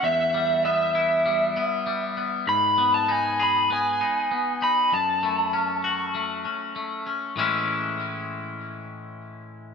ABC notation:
X:1
M:4/4
L:1/16
Q:1/4=98
K:Alyd
V:1 name="Lead electric guitar"
e4 e8- e2 z2 | b3 a g2 b2 g6 b2 | a12 z4 | z16 |]
V:2 name="Clean electric guitar"
E,,2 =G,2 B,2 E2 G,2 B,2 G,2 B,2 | G,,2 B,2 D2 G2 B,2 D2 B,2 D2 | F,,2 A,2 C2 F2 A,2 C2 A,2 C2 | [A,,E,G,CE]16 |]